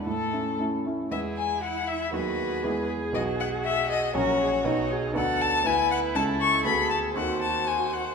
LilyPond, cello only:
\new Staff \with { instrumentName = "Cello" } { \time 2/4 \key a \major \tempo 4 = 119 a4 r4 | \key e \major e'2 | fis'4 gis'4~ | gis'2 |
ais'8 gis'8 fis'8 gis'8 | \key b \dorian a'4 b'4 | a'4 gis'4 | fis'2 | }